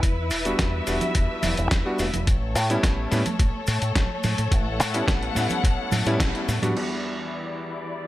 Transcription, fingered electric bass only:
0, 0, Header, 1, 2, 480
1, 0, Start_track
1, 0, Tempo, 560748
1, 28, Time_signature, 4, 2, 24, 8
1, 6909, End_track
2, 0, Start_track
2, 0, Title_t, "Fingered electric bass"
2, 0, Program_c, 0, 33
2, 25, Note_on_c, 0, 40, 94
2, 267, Note_off_c, 0, 40, 0
2, 267, Note_on_c, 0, 28, 96
2, 440, Note_off_c, 0, 28, 0
2, 505, Note_on_c, 0, 40, 90
2, 679, Note_off_c, 0, 40, 0
2, 746, Note_on_c, 0, 28, 89
2, 835, Note_off_c, 0, 28, 0
2, 985, Note_on_c, 0, 40, 80
2, 1074, Note_off_c, 0, 40, 0
2, 1228, Note_on_c, 0, 28, 99
2, 1315, Note_off_c, 0, 28, 0
2, 1352, Note_on_c, 0, 28, 98
2, 1435, Note_off_c, 0, 28, 0
2, 1706, Note_on_c, 0, 28, 96
2, 1794, Note_off_c, 0, 28, 0
2, 1830, Note_on_c, 0, 28, 82
2, 1914, Note_off_c, 0, 28, 0
2, 1945, Note_on_c, 0, 33, 98
2, 2187, Note_off_c, 0, 33, 0
2, 2187, Note_on_c, 0, 45, 91
2, 2360, Note_off_c, 0, 45, 0
2, 2427, Note_on_c, 0, 33, 95
2, 2600, Note_off_c, 0, 33, 0
2, 2669, Note_on_c, 0, 45, 90
2, 2756, Note_off_c, 0, 45, 0
2, 2906, Note_on_c, 0, 33, 88
2, 2995, Note_off_c, 0, 33, 0
2, 3148, Note_on_c, 0, 45, 100
2, 3235, Note_off_c, 0, 45, 0
2, 3270, Note_on_c, 0, 45, 97
2, 3354, Note_off_c, 0, 45, 0
2, 3386, Note_on_c, 0, 33, 77
2, 3474, Note_off_c, 0, 33, 0
2, 3631, Note_on_c, 0, 45, 93
2, 3717, Note_off_c, 0, 45, 0
2, 3753, Note_on_c, 0, 45, 89
2, 3836, Note_off_c, 0, 45, 0
2, 3865, Note_on_c, 0, 33, 97
2, 4110, Note_off_c, 0, 33, 0
2, 4110, Note_on_c, 0, 45, 95
2, 4281, Note_off_c, 0, 45, 0
2, 4346, Note_on_c, 0, 33, 94
2, 4519, Note_off_c, 0, 33, 0
2, 4590, Note_on_c, 0, 45, 90
2, 4676, Note_off_c, 0, 45, 0
2, 4826, Note_on_c, 0, 33, 82
2, 4914, Note_off_c, 0, 33, 0
2, 5067, Note_on_c, 0, 45, 95
2, 5155, Note_off_c, 0, 45, 0
2, 5189, Note_on_c, 0, 45, 95
2, 5274, Note_off_c, 0, 45, 0
2, 5305, Note_on_c, 0, 33, 97
2, 5394, Note_off_c, 0, 33, 0
2, 5548, Note_on_c, 0, 45, 91
2, 5635, Note_off_c, 0, 45, 0
2, 5671, Note_on_c, 0, 45, 84
2, 5755, Note_off_c, 0, 45, 0
2, 6909, End_track
0, 0, End_of_file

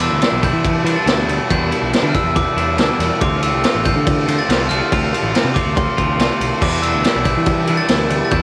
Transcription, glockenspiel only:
0, 0, Header, 1, 2, 480
1, 0, Start_track
1, 0, Tempo, 426743
1, 1691, Time_signature, 4, 2, 24, 8
1, 9471, End_track
2, 0, Start_track
2, 0, Title_t, "Glockenspiel"
2, 0, Program_c, 0, 9
2, 17, Note_on_c, 0, 88, 94
2, 459, Note_off_c, 0, 88, 0
2, 497, Note_on_c, 0, 91, 118
2, 1083, Note_on_c, 0, 93, 113
2, 1112, Note_off_c, 0, 91, 0
2, 1645, Note_off_c, 0, 93, 0
2, 1697, Note_on_c, 0, 91, 116
2, 2310, Note_off_c, 0, 91, 0
2, 2356, Note_on_c, 0, 89, 70
2, 2414, Note_off_c, 0, 89, 0
2, 2420, Note_on_c, 0, 88, 108
2, 2639, Note_off_c, 0, 88, 0
2, 2652, Note_on_c, 0, 86, 94
2, 3327, Note_off_c, 0, 86, 0
2, 3607, Note_on_c, 0, 86, 110
2, 3854, Note_on_c, 0, 88, 99
2, 3857, Note_off_c, 0, 86, 0
2, 4330, Note_on_c, 0, 91, 112
2, 4347, Note_off_c, 0, 88, 0
2, 4932, Note_on_c, 0, 93, 110
2, 4948, Note_off_c, 0, 91, 0
2, 5275, Note_on_c, 0, 89, 103
2, 5302, Note_off_c, 0, 93, 0
2, 6196, Note_off_c, 0, 89, 0
2, 6232, Note_on_c, 0, 86, 96
2, 6463, Note_off_c, 0, 86, 0
2, 6482, Note_on_c, 0, 84, 97
2, 7159, Note_off_c, 0, 84, 0
2, 7441, Note_on_c, 0, 86, 108
2, 7676, Note_on_c, 0, 88, 92
2, 7690, Note_off_c, 0, 86, 0
2, 8126, Note_off_c, 0, 88, 0
2, 8149, Note_on_c, 0, 91, 101
2, 8743, Note_on_c, 0, 93, 109
2, 8773, Note_off_c, 0, 91, 0
2, 9264, Note_off_c, 0, 93, 0
2, 9278, Note_on_c, 0, 93, 78
2, 9349, Note_on_c, 0, 91, 121
2, 9359, Note_off_c, 0, 93, 0
2, 9471, Note_off_c, 0, 91, 0
2, 9471, End_track
0, 0, End_of_file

